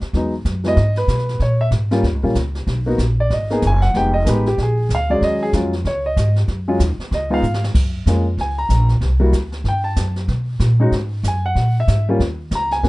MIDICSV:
0, 0, Header, 1, 5, 480
1, 0, Start_track
1, 0, Key_signature, -6, "minor"
1, 0, Tempo, 317460
1, 198, Time_signature, 4, 2, 24, 8
1, 19488, End_track
2, 0, Start_track
2, 0, Title_t, "Grand piano"
2, 0, Program_c, 0, 0
2, 222, Note_on_c, 0, 54, 56
2, 232, Note_on_c, 0, 56, 52
2, 248, Note_on_c, 0, 59, 51
2, 249, Note_on_c, 0, 63, 60
2, 472, Note_off_c, 0, 54, 0
2, 477, Note_off_c, 0, 56, 0
2, 485, Note_off_c, 0, 59, 0
2, 486, Note_off_c, 0, 63, 0
2, 963, Note_on_c, 0, 54, 58
2, 976, Note_on_c, 0, 59, 57
2, 984, Note_on_c, 0, 56, 53
2, 992, Note_on_c, 0, 64, 65
2, 1026, Note_on_c, 0, 75, 98
2, 1137, Note_off_c, 0, 54, 0
2, 1143, Note_off_c, 0, 59, 0
2, 1147, Note_off_c, 0, 56, 0
2, 1151, Note_off_c, 0, 64, 0
2, 1447, Note_off_c, 0, 75, 0
2, 1474, Note_on_c, 0, 71, 83
2, 2086, Note_off_c, 0, 71, 0
2, 2150, Note_on_c, 0, 73, 74
2, 2418, Note_off_c, 0, 73, 0
2, 2432, Note_on_c, 0, 76, 91
2, 2539, Note_off_c, 0, 76, 0
2, 2888, Note_on_c, 0, 55, 69
2, 2894, Note_on_c, 0, 58, 63
2, 2904, Note_on_c, 0, 65, 77
2, 2908, Note_on_c, 0, 61, 64
2, 3060, Note_off_c, 0, 55, 0
2, 3063, Note_off_c, 0, 58, 0
2, 3068, Note_off_c, 0, 65, 0
2, 3070, Note_off_c, 0, 61, 0
2, 3373, Note_on_c, 0, 55, 63
2, 3375, Note_on_c, 0, 58, 60
2, 3383, Note_on_c, 0, 61, 58
2, 3389, Note_on_c, 0, 65, 67
2, 3543, Note_off_c, 0, 55, 0
2, 3544, Note_off_c, 0, 58, 0
2, 3548, Note_off_c, 0, 61, 0
2, 3551, Note_off_c, 0, 65, 0
2, 4329, Note_on_c, 0, 58, 67
2, 4341, Note_on_c, 0, 63, 62
2, 4345, Note_on_c, 0, 59, 62
2, 4349, Note_on_c, 0, 66, 68
2, 4501, Note_off_c, 0, 58, 0
2, 4507, Note_off_c, 0, 63, 0
2, 4509, Note_off_c, 0, 59, 0
2, 4511, Note_off_c, 0, 66, 0
2, 4842, Note_on_c, 0, 74, 86
2, 5011, Note_off_c, 0, 74, 0
2, 5030, Note_on_c, 0, 75, 72
2, 5300, Note_on_c, 0, 58, 68
2, 5314, Note_on_c, 0, 63, 60
2, 5317, Note_on_c, 0, 59, 62
2, 5327, Note_on_c, 0, 68, 74
2, 5463, Note_off_c, 0, 75, 0
2, 5467, Note_off_c, 0, 58, 0
2, 5474, Note_off_c, 0, 63, 0
2, 5475, Note_off_c, 0, 59, 0
2, 5480, Note_off_c, 0, 68, 0
2, 5549, Note_on_c, 0, 80, 96
2, 5776, Note_on_c, 0, 78, 96
2, 5799, Note_off_c, 0, 80, 0
2, 5958, Note_off_c, 0, 78, 0
2, 5985, Note_on_c, 0, 56, 54
2, 5987, Note_on_c, 0, 63, 51
2, 5988, Note_on_c, 0, 59, 50
2, 5997, Note_on_c, 0, 79, 94
2, 6001, Note_on_c, 0, 67, 66
2, 6236, Note_off_c, 0, 56, 0
2, 6237, Note_off_c, 0, 59, 0
2, 6237, Note_off_c, 0, 63, 0
2, 6244, Note_off_c, 0, 67, 0
2, 6256, Note_on_c, 0, 75, 87
2, 6263, Note_off_c, 0, 79, 0
2, 6425, Note_on_c, 0, 70, 52
2, 6438, Note_off_c, 0, 75, 0
2, 6446, Note_on_c, 0, 56, 62
2, 6448, Note_on_c, 0, 59, 60
2, 6457, Note_off_c, 0, 70, 0
2, 6459, Note_on_c, 0, 63, 55
2, 6467, Note_on_c, 0, 67, 68
2, 6485, Note_on_c, 0, 71, 75
2, 6706, Note_off_c, 0, 56, 0
2, 6707, Note_off_c, 0, 59, 0
2, 6713, Note_off_c, 0, 63, 0
2, 6717, Note_off_c, 0, 67, 0
2, 6747, Note_off_c, 0, 71, 0
2, 6764, Note_on_c, 0, 67, 81
2, 6933, Note_off_c, 0, 67, 0
2, 6993, Note_on_c, 0, 68, 76
2, 7407, Note_off_c, 0, 68, 0
2, 7479, Note_on_c, 0, 77, 92
2, 7708, Note_on_c, 0, 56, 58
2, 7709, Note_on_c, 0, 54, 63
2, 7720, Note_on_c, 0, 74, 90
2, 7724, Note_off_c, 0, 77, 0
2, 7725, Note_on_c, 0, 61, 61
2, 7731, Note_on_c, 0, 68, 76
2, 7891, Note_off_c, 0, 74, 0
2, 7921, Note_on_c, 0, 75, 92
2, 8180, Note_off_c, 0, 68, 0
2, 8184, Note_off_c, 0, 75, 0
2, 8203, Note_on_c, 0, 68, 94
2, 8307, Note_off_c, 0, 68, 0
2, 8332, Note_off_c, 0, 54, 0
2, 8332, Note_off_c, 0, 56, 0
2, 8341, Note_off_c, 0, 61, 0
2, 8371, Note_on_c, 0, 54, 62
2, 8374, Note_on_c, 0, 56, 54
2, 8380, Note_on_c, 0, 61, 50
2, 8387, Note_on_c, 0, 65, 63
2, 8628, Note_off_c, 0, 54, 0
2, 8630, Note_off_c, 0, 56, 0
2, 8633, Note_off_c, 0, 61, 0
2, 8637, Note_off_c, 0, 65, 0
2, 8876, Note_on_c, 0, 73, 78
2, 9142, Note_off_c, 0, 73, 0
2, 9163, Note_on_c, 0, 75, 83
2, 9595, Note_off_c, 0, 75, 0
2, 10097, Note_on_c, 0, 54, 72
2, 10101, Note_on_c, 0, 56, 64
2, 10103, Note_on_c, 0, 61, 69
2, 10111, Note_on_c, 0, 65, 75
2, 10265, Note_off_c, 0, 54, 0
2, 10266, Note_off_c, 0, 56, 0
2, 10268, Note_off_c, 0, 61, 0
2, 10272, Note_off_c, 0, 65, 0
2, 10799, Note_on_c, 0, 75, 80
2, 11042, Note_on_c, 0, 56, 65
2, 11050, Note_on_c, 0, 59, 61
2, 11050, Note_on_c, 0, 65, 76
2, 11055, Note_on_c, 0, 63, 58
2, 11063, Note_off_c, 0, 75, 0
2, 11094, Note_on_c, 0, 77, 86
2, 11217, Note_off_c, 0, 56, 0
2, 11221, Note_off_c, 0, 59, 0
2, 11221, Note_off_c, 0, 65, 0
2, 11223, Note_off_c, 0, 63, 0
2, 11521, Note_off_c, 0, 77, 0
2, 12205, Note_on_c, 0, 58, 50
2, 12207, Note_on_c, 0, 56, 59
2, 12213, Note_on_c, 0, 61, 50
2, 12222, Note_on_c, 0, 65, 59
2, 12465, Note_off_c, 0, 58, 0
2, 12466, Note_off_c, 0, 56, 0
2, 12469, Note_off_c, 0, 61, 0
2, 12473, Note_off_c, 0, 65, 0
2, 12713, Note_on_c, 0, 80, 80
2, 12980, Note_off_c, 0, 80, 0
2, 12980, Note_on_c, 0, 82, 92
2, 13422, Note_off_c, 0, 82, 0
2, 13906, Note_on_c, 0, 55, 66
2, 13906, Note_on_c, 0, 58, 56
2, 13926, Note_on_c, 0, 64, 58
2, 13926, Note_on_c, 0, 66, 70
2, 14089, Note_off_c, 0, 55, 0
2, 14089, Note_off_c, 0, 58, 0
2, 14099, Note_off_c, 0, 64, 0
2, 14099, Note_off_c, 0, 66, 0
2, 14644, Note_on_c, 0, 79, 87
2, 14878, Note_on_c, 0, 81, 75
2, 14905, Note_off_c, 0, 79, 0
2, 15331, Note_off_c, 0, 81, 0
2, 16325, Note_on_c, 0, 56, 65
2, 16338, Note_on_c, 0, 61, 65
2, 16340, Note_on_c, 0, 63, 67
2, 16359, Note_on_c, 0, 66, 76
2, 16498, Note_off_c, 0, 56, 0
2, 16505, Note_off_c, 0, 61, 0
2, 16506, Note_off_c, 0, 63, 0
2, 16515, Note_off_c, 0, 66, 0
2, 17053, Note_on_c, 0, 80, 83
2, 17310, Note_off_c, 0, 80, 0
2, 17322, Note_on_c, 0, 78, 96
2, 17754, Note_off_c, 0, 78, 0
2, 17841, Note_on_c, 0, 76, 85
2, 18255, Note_off_c, 0, 76, 0
2, 18274, Note_on_c, 0, 55, 70
2, 18282, Note_on_c, 0, 58, 60
2, 18287, Note_on_c, 0, 61, 64
2, 18296, Note_on_c, 0, 65, 75
2, 18432, Note_off_c, 0, 55, 0
2, 18437, Note_off_c, 0, 58, 0
2, 18439, Note_off_c, 0, 61, 0
2, 18443, Note_off_c, 0, 65, 0
2, 18980, Note_on_c, 0, 82, 99
2, 19233, Note_off_c, 0, 82, 0
2, 19237, Note_on_c, 0, 80, 91
2, 19404, Note_on_c, 0, 59, 55
2, 19406, Note_on_c, 0, 61, 54
2, 19408, Note_on_c, 0, 58, 55
2, 19421, Note_on_c, 0, 66, 62
2, 19488, Note_off_c, 0, 58, 0
2, 19488, Note_off_c, 0, 59, 0
2, 19488, Note_off_c, 0, 61, 0
2, 19488, Note_off_c, 0, 66, 0
2, 19488, Note_off_c, 0, 80, 0
2, 19488, End_track
3, 0, Start_track
3, 0, Title_t, "Upright bass"
3, 0, Program_c, 1, 32
3, 202, Note_on_c, 1, 40, 81
3, 666, Note_off_c, 1, 40, 0
3, 681, Note_on_c, 1, 42, 89
3, 1146, Note_off_c, 1, 42, 0
3, 1158, Note_on_c, 1, 44, 84
3, 1620, Note_off_c, 1, 44, 0
3, 1629, Note_on_c, 1, 47, 88
3, 2100, Note_off_c, 1, 47, 0
3, 2109, Note_on_c, 1, 46, 80
3, 2575, Note_off_c, 1, 46, 0
3, 2584, Note_on_c, 1, 44, 86
3, 3058, Note_off_c, 1, 44, 0
3, 3072, Note_on_c, 1, 39, 78
3, 3237, Note_off_c, 1, 39, 0
3, 3237, Note_on_c, 1, 37, 55
3, 3367, Note_off_c, 1, 37, 0
3, 3376, Note_on_c, 1, 34, 62
3, 3537, Note_off_c, 1, 34, 0
3, 3552, Note_on_c, 1, 37, 85
3, 4022, Note_off_c, 1, 37, 0
3, 4034, Note_on_c, 1, 35, 73
3, 4499, Note_off_c, 1, 35, 0
3, 4508, Note_on_c, 1, 34, 91
3, 4981, Note_off_c, 1, 34, 0
3, 4992, Note_on_c, 1, 32, 76
3, 5463, Note_off_c, 1, 32, 0
3, 5480, Note_on_c, 1, 30, 89
3, 5947, Note_off_c, 1, 30, 0
3, 5956, Note_on_c, 1, 29, 83
3, 6425, Note_off_c, 1, 29, 0
3, 6442, Note_on_c, 1, 33, 91
3, 6908, Note_off_c, 1, 33, 0
3, 6922, Note_on_c, 1, 34, 80
3, 7388, Note_off_c, 1, 34, 0
3, 7397, Note_on_c, 1, 38, 89
3, 7865, Note_off_c, 1, 38, 0
3, 7876, Note_on_c, 1, 39, 83
3, 8345, Note_off_c, 1, 39, 0
3, 8361, Note_on_c, 1, 41, 91
3, 8827, Note_off_c, 1, 41, 0
3, 8841, Note_on_c, 1, 37, 83
3, 9307, Note_off_c, 1, 37, 0
3, 9323, Note_on_c, 1, 44, 84
3, 9788, Note_off_c, 1, 44, 0
3, 9795, Note_on_c, 1, 42, 85
3, 10263, Note_off_c, 1, 42, 0
3, 10272, Note_on_c, 1, 39, 93
3, 10542, Note_off_c, 1, 39, 0
3, 10752, Note_on_c, 1, 37, 87
3, 11213, Note_off_c, 1, 37, 0
3, 11222, Note_on_c, 1, 44, 88
3, 11696, Note_off_c, 1, 44, 0
3, 11708, Note_on_c, 1, 42, 76
3, 12174, Note_off_c, 1, 42, 0
3, 12183, Note_on_c, 1, 41, 83
3, 12652, Note_off_c, 1, 41, 0
3, 12661, Note_on_c, 1, 37, 76
3, 13129, Note_off_c, 1, 37, 0
3, 13138, Note_on_c, 1, 34, 86
3, 13609, Note_off_c, 1, 34, 0
3, 13618, Note_on_c, 1, 36, 79
3, 14090, Note_off_c, 1, 36, 0
3, 14099, Note_on_c, 1, 38, 89
3, 14569, Note_off_c, 1, 38, 0
3, 14578, Note_on_c, 1, 43, 84
3, 15055, Note_off_c, 1, 43, 0
3, 15062, Note_on_c, 1, 42, 87
3, 15533, Note_off_c, 1, 42, 0
3, 15542, Note_on_c, 1, 47, 84
3, 16012, Note_off_c, 1, 47, 0
3, 16021, Note_on_c, 1, 46, 92
3, 16496, Note_off_c, 1, 46, 0
3, 16504, Note_on_c, 1, 44, 81
3, 16978, Note_off_c, 1, 44, 0
3, 16984, Note_on_c, 1, 42, 87
3, 17458, Note_off_c, 1, 42, 0
3, 17467, Note_on_c, 1, 46, 81
3, 17939, Note_off_c, 1, 46, 0
3, 17956, Note_on_c, 1, 44, 85
3, 18423, Note_off_c, 1, 44, 0
3, 18435, Note_on_c, 1, 39, 77
3, 18903, Note_off_c, 1, 39, 0
3, 18915, Note_on_c, 1, 37, 81
3, 19383, Note_off_c, 1, 37, 0
3, 19402, Note_on_c, 1, 32, 80
3, 19488, Note_off_c, 1, 32, 0
3, 19488, End_track
4, 0, Start_track
4, 0, Title_t, "Muted upright bass strokes"
4, 23, Note_on_c, 9, 29, 36
4, 175, Note_off_c, 9, 29, 0
4, 10551, Note_on_c, 9, 29, 40
4, 10702, Note_off_c, 9, 29, 0
4, 19488, End_track
5, 0, Start_track
5, 0, Title_t, "Drums"
5, 18, Note_on_c, 9, 38, 36
5, 169, Note_off_c, 9, 38, 0
5, 203, Note_on_c, 9, 36, 22
5, 207, Note_on_c, 9, 25, 43
5, 207, Note_on_c, 9, 38, 40
5, 354, Note_off_c, 9, 36, 0
5, 358, Note_off_c, 9, 38, 0
5, 681, Note_on_c, 9, 36, 21
5, 685, Note_on_c, 9, 38, 57
5, 685, Note_on_c, 9, 44, 49
5, 832, Note_off_c, 9, 36, 0
5, 836, Note_off_c, 9, 38, 0
5, 836, Note_off_c, 9, 44, 0
5, 970, Note_on_c, 9, 38, 35
5, 1122, Note_off_c, 9, 38, 0
5, 1157, Note_off_c, 9, 25, 0
5, 1157, Note_on_c, 9, 25, 47
5, 1157, Note_on_c, 9, 38, 45
5, 1158, Note_on_c, 9, 36, 17
5, 1308, Note_off_c, 9, 38, 0
5, 1309, Note_off_c, 9, 36, 0
5, 1448, Note_on_c, 9, 38, 37
5, 1599, Note_off_c, 9, 38, 0
5, 1636, Note_on_c, 9, 36, 18
5, 1639, Note_on_c, 9, 38, 56
5, 1639, Note_on_c, 9, 44, 49
5, 1788, Note_off_c, 9, 36, 0
5, 1791, Note_off_c, 9, 38, 0
5, 1791, Note_off_c, 9, 44, 0
5, 1791, Note_on_c, 9, 38, 28
5, 1942, Note_off_c, 9, 38, 0
5, 1949, Note_on_c, 9, 38, 41
5, 2100, Note_off_c, 9, 38, 0
5, 2113, Note_on_c, 9, 36, 21
5, 2117, Note_off_c, 9, 25, 0
5, 2117, Note_on_c, 9, 25, 43
5, 2117, Note_on_c, 9, 38, 41
5, 2264, Note_off_c, 9, 36, 0
5, 2269, Note_off_c, 9, 38, 0
5, 2592, Note_on_c, 9, 38, 57
5, 2592, Note_on_c, 9, 44, 50
5, 2594, Note_on_c, 9, 36, 22
5, 2744, Note_off_c, 9, 38, 0
5, 2744, Note_off_c, 9, 44, 0
5, 2745, Note_off_c, 9, 36, 0
5, 2889, Note_on_c, 9, 38, 38
5, 3040, Note_off_c, 9, 38, 0
5, 3075, Note_on_c, 9, 36, 24
5, 3083, Note_off_c, 9, 25, 0
5, 3083, Note_on_c, 9, 25, 44
5, 3083, Note_on_c, 9, 38, 45
5, 3226, Note_off_c, 9, 36, 0
5, 3234, Note_off_c, 9, 38, 0
5, 3555, Note_on_c, 9, 36, 17
5, 3555, Note_on_c, 9, 38, 54
5, 3555, Note_on_c, 9, 44, 47
5, 3706, Note_off_c, 9, 36, 0
5, 3706, Note_off_c, 9, 38, 0
5, 3706, Note_off_c, 9, 44, 0
5, 3854, Note_on_c, 9, 38, 37
5, 4005, Note_off_c, 9, 38, 0
5, 4035, Note_on_c, 9, 36, 22
5, 4040, Note_off_c, 9, 25, 0
5, 4040, Note_on_c, 9, 25, 48
5, 4040, Note_on_c, 9, 38, 43
5, 4186, Note_off_c, 9, 36, 0
5, 4191, Note_off_c, 9, 38, 0
5, 4516, Note_on_c, 9, 36, 19
5, 4517, Note_on_c, 9, 38, 56
5, 4517, Note_on_c, 9, 44, 58
5, 4667, Note_off_c, 9, 36, 0
5, 4668, Note_off_c, 9, 38, 0
5, 4668, Note_off_c, 9, 44, 0
5, 4995, Note_off_c, 9, 25, 0
5, 4995, Note_on_c, 9, 25, 52
5, 4995, Note_on_c, 9, 38, 45
5, 4998, Note_on_c, 9, 36, 25
5, 5146, Note_off_c, 9, 38, 0
5, 5149, Note_off_c, 9, 36, 0
5, 5293, Note_on_c, 9, 38, 35
5, 5444, Note_off_c, 9, 38, 0
5, 5474, Note_on_c, 9, 38, 57
5, 5474, Note_on_c, 9, 44, 50
5, 5480, Note_on_c, 9, 36, 19
5, 5625, Note_off_c, 9, 38, 0
5, 5625, Note_off_c, 9, 44, 0
5, 5631, Note_off_c, 9, 36, 0
5, 5772, Note_on_c, 9, 38, 37
5, 5923, Note_off_c, 9, 38, 0
5, 5961, Note_off_c, 9, 25, 0
5, 5961, Note_on_c, 9, 25, 41
5, 5961, Note_on_c, 9, 38, 44
5, 5963, Note_on_c, 9, 36, 23
5, 6112, Note_off_c, 9, 38, 0
5, 6114, Note_off_c, 9, 36, 0
5, 6444, Note_on_c, 9, 36, 22
5, 6447, Note_on_c, 9, 38, 59
5, 6447, Note_on_c, 9, 44, 54
5, 6595, Note_off_c, 9, 36, 0
5, 6598, Note_off_c, 9, 38, 0
5, 6598, Note_off_c, 9, 44, 0
5, 6743, Note_on_c, 9, 38, 35
5, 6894, Note_off_c, 9, 38, 0
5, 6926, Note_off_c, 9, 25, 0
5, 6926, Note_on_c, 9, 25, 45
5, 6926, Note_on_c, 9, 36, 26
5, 6926, Note_on_c, 9, 38, 44
5, 7077, Note_off_c, 9, 36, 0
5, 7077, Note_off_c, 9, 38, 0
5, 7405, Note_on_c, 9, 36, 19
5, 7412, Note_on_c, 9, 38, 59
5, 7412, Note_on_c, 9, 44, 47
5, 7556, Note_off_c, 9, 36, 0
5, 7563, Note_off_c, 9, 38, 0
5, 7563, Note_off_c, 9, 44, 0
5, 7885, Note_on_c, 9, 36, 18
5, 7896, Note_off_c, 9, 25, 0
5, 7896, Note_on_c, 9, 25, 45
5, 7896, Note_on_c, 9, 38, 46
5, 8037, Note_off_c, 9, 36, 0
5, 8047, Note_off_c, 9, 38, 0
5, 8362, Note_on_c, 9, 38, 59
5, 8362, Note_on_c, 9, 44, 51
5, 8364, Note_on_c, 9, 36, 22
5, 8513, Note_off_c, 9, 38, 0
5, 8513, Note_off_c, 9, 44, 0
5, 8515, Note_off_c, 9, 36, 0
5, 8662, Note_on_c, 9, 38, 35
5, 8813, Note_off_c, 9, 38, 0
5, 8844, Note_on_c, 9, 36, 25
5, 8848, Note_off_c, 9, 25, 0
5, 8848, Note_on_c, 9, 25, 52
5, 8848, Note_on_c, 9, 38, 45
5, 8995, Note_off_c, 9, 36, 0
5, 8999, Note_off_c, 9, 38, 0
5, 9322, Note_on_c, 9, 36, 24
5, 9330, Note_on_c, 9, 38, 57
5, 9330, Note_on_c, 9, 44, 57
5, 9473, Note_off_c, 9, 36, 0
5, 9481, Note_off_c, 9, 38, 0
5, 9481, Note_off_c, 9, 44, 0
5, 9617, Note_on_c, 9, 38, 39
5, 9769, Note_off_c, 9, 38, 0
5, 9798, Note_on_c, 9, 36, 27
5, 9799, Note_off_c, 9, 25, 0
5, 9799, Note_on_c, 9, 25, 50
5, 9799, Note_on_c, 9, 38, 43
5, 9949, Note_off_c, 9, 36, 0
5, 9950, Note_off_c, 9, 38, 0
5, 10276, Note_on_c, 9, 36, 17
5, 10279, Note_on_c, 9, 38, 60
5, 10279, Note_on_c, 9, 44, 60
5, 10427, Note_off_c, 9, 36, 0
5, 10430, Note_off_c, 9, 38, 0
5, 10430, Note_off_c, 9, 44, 0
5, 10581, Note_on_c, 9, 38, 36
5, 10733, Note_off_c, 9, 38, 0
5, 10757, Note_on_c, 9, 36, 25
5, 10767, Note_off_c, 9, 25, 0
5, 10767, Note_on_c, 9, 25, 59
5, 10767, Note_on_c, 9, 38, 45
5, 10908, Note_off_c, 9, 36, 0
5, 10918, Note_off_c, 9, 38, 0
5, 11239, Note_on_c, 9, 44, 48
5, 11390, Note_off_c, 9, 44, 0
5, 11400, Note_on_c, 9, 38, 62
5, 11551, Note_off_c, 9, 38, 0
5, 11555, Note_on_c, 9, 38, 76
5, 11706, Note_off_c, 9, 38, 0
5, 11713, Note_on_c, 9, 36, 67
5, 11718, Note_off_c, 9, 25, 0
5, 11718, Note_on_c, 9, 25, 47
5, 11718, Note_on_c, 9, 38, 37
5, 11718, Note_on_c, 9, 49, 67
5, 11865, Note_off_c, 9, 36, 0
5, 11870, Note_off_c, 9, 38, 0
5, 11870, Note_off_c, 9, 49, 0
5, 12190, Note_on_c, 9, 36, 22
5, 12201, Note_on_c, 9, 38, 58
5, 12201, Note_on_c, 9, 44, 51
5, 12342, Note_off_c, 9, 36, 0
5, 12352, Note_off_c, 9, 38, 0
5, 12352, Note_off_c, 9, 44, 0
5, 12667, Note_on_c, 9, 36, 21
5, 12673, Note_off_c, 9, 25, 0
5, 12673, Note_on_c, 9, 25, 52
5, 12673, Note_on_c, 9, 38, 41
5, 12819, Note_off_c, 9, 36, 0
5, 12825, Note_off_c, 9, 38, 0
5, 13147, Note_on_c, 9, 36, 18
5, 13152, Note_on_c, 9, 38, 51
5, 13152, Note_on_c, 9, 44, 53
5, 13299, Note_off_c, 9, 36, 0
5, 13303, Note_off_c, 9, 38, 0
5, 13303, Note_off_c, 9, 44, 0
5, 13439, Note_on_c, 9, 38, 35
5, 13591, Note_off_c, 9, 38, 0
5, 13623, Note_on_c, 9, 36, 21
5, 13628, Note_off_c, 9, 25, 0
5, 13628, Note_on_c, 9, 25, 49
5, 13628, Note_on_c, 9, 38, 43
5, 13775, Note_off_c, 9, 36, 0
5, 13779, Note_off_c, 9, 38, 0
5, 14105, Note_on_c, 9, 36, 23
5, 14107, Note_on_c, 9, 38, 55
5, 14107, Note_on_c, 9, 44, 48
5, 14257, Note_off_c, 9, 36, 0
5, 14258, Note_off_c, 9, 38, 0
5, 14258, Note_off_c, 9, 44, 0
5, 14397, Note_on_c, 9, 38, 37
5, 14548, Note_off_c, 9, 38, 0
5, 14586, Note_off_c, 9, 25, 0
5, 14586, Note_on_c, 9, 25, 50
5, 14586, Note_on_c, 9, 36, 20
5, 14586, Note_on_c, 9, 38, 43
5, 14737, Note_off_c, 9, 36, 0
5, 14738, Note_off_c, 9, 38, 0
5, 15066, Note_on_c, 9, 38, 57
5, 15066, Note_on_c, 9, 44, 56
5, 15067, Note_on_c, 9, 36, 25
5, 15217, Note_off_c, 9, 38, 0
5, 15217, Note_off_c, 9, 44, 0
5, 15219, Note_off_c, 9, 36, 0
5, 15361, Note_on_c, 9, 38, 35
5, 15513, Note_off_c, 9, 38, 0
5, 15548, Note_on_c, 9, 36, 21
5, 15549, Note_off_c, 9, 25, 0
5, 15549, Note_on_c, 9, 25, 50
5, 15549, Note_on_c, 9, 38, 44
5, 15699, Note_off_c, 9, 36, 0
5, 15700, Note_off_c, 9, 38, 0
5, 16027, Note_on_c, 9, 38, 54
5, 16027, Note_on_c, 9, 44, 63
5, 16029, Note_on_c, 9, 36, 22
5, 16178, Note_off_c, 9, 38, 0
5, 16178, Note_off_c, 9, 44, 0
5, 16180, Note_off_c, 9, 36, 0
5, 16510, Note_on_c, 9, 36, 21
5, 16515, Note_off_c, 9, 25, 0
5, 16515, Note_on_c, 9, 25, 48
5, 16515, Note_on_c, 9, 38, 44
5, 16661, Note_off_c, 9, 36, 0
5, 16666, Note_off_c, 9, 38, 0
5, 16991, Note_on_c, 9, 36, 17
5, 16996, Note_on_c, 9, 38, 56
5, 16996, Note_on_c, 9, 44, 60
5, 17143, Note_off_c, 9, 36, 0
5, 17147, Note_off_c, 9, 38, 0
5, 17147, Note_off_c, 9, 44, 0
5, 17473, Note_on_c, 9, 36, 23
5, 17481, Note_off_c, 9, 25, 0
5, 17481, Note_on_c, 9, 25, 51
5, 17481, Note_on_c, 9, 38, 42
5, 17624, Note_off_c, 9, 36, 0
5, 17632, Note_off_c, 9, 38, 0
5, 17956, Note_on_c, 9, 36, 20
5, 17962, Note_on_c, 9, 38, 60
5, 17962, Note_on_c, 9, 44, 52
5, 18107, Note_off_c, 9, 36, 0
5, 18113, Note_off_c, 9, 38, 0
5, 18113, Note_off_c, 9, 44, 0
5, 18441, Note_on_c, 9, 36, 26
5, 18448, Note_off_c, 9, 25, 0
5, 18448, Note_on_c, 9, 25, 45
5, 18448, Note_on_c, 9, 38, 47
5, 18592, Note_off_c, 9, 36, 0
5, 18599, Note_off_c, 9, 38, 0
5, 18921, Note_on_c, 9, 36, 18
5, 18921, Note_on_c, 9, 38, 59
5, 18921, Note_on_c, 9, 44, 50
5, 19072, Note_off_c, 9, 38, 0
5, 19072, Note_off_c, 9, 44, 0
5, 19073, Note_off_c, 9, 36, 0
5, 19219, Note_on_c, 9, 38, 39
5, 19371, Note_off_c, 9, 38, 0
5, 19404, Note_on_c, 9, 36, 19
5, 19415, Note_off_c, 9, 25, 0
5, 19415, Note_on_c, 9, 25, 43
5, 19415, Note_on_c, 9, 38, 41
5, 19488, Note_off_c, 9, 25, 0
5, 19488, Note_off_c, 9, 36, 0
5, 19488, Note_off_c, 9, 38, 0
5, 19488, End_track
0, 0, End_of_file